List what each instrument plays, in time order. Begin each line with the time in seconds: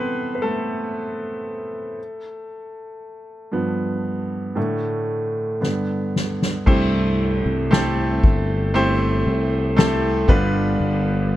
Already playing: grand piano C3 E3 A3 B3 C4 B4 C5
0.35 grand piano B4
0.42 grand piano A3 A4
3.52 grand piano G2 F3 B3
4.55 grand piano A2 D3 A3
5.61 grand piano G2 D3 B3, snare
6.16 snare
6.42 snare
6.66 fretless electric bass C2, grand piano G2 A3 C4 E4 G4 C5, kick, crash
7.20 ride
7.46 fretless electric bass C2
7.71 grand piano A3 C4 E4 G4 A4, snare, ride
8.24 fretless electric bass G1, kick, ride
8.74 grand piano A3 C4 E4 G4 C5, ride
9.26 fretless electric bass C2, ride
9.77 grand piano A3 C4 E4 G4 A4, snare, ride
10.28 fretless electric bass G1, grand piano G2 D3 G3 B3 D4 F4 B4, kick
10.80 fretless electric bass G1, ride
11.31 ride